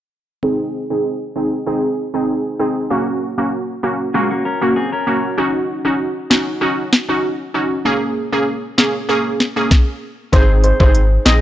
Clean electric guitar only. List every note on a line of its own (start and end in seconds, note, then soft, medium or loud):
4.14 4.30 G#3 medium
4.14 4.30 F4 medium
4.31 4.45 A#3 medium
4.31 4.45 F#4 medium
4.45 4.61 C#4 medium
4.45 4.61 A#4 medium
4.62 4.76 A#3 medium
4.62 4.75 F#4 medium
4.76 4.92 C4 medium
4.76 4.92 G#4 medium
4.92 5.36 C#4 medium
4.92 5.36 A#4 medium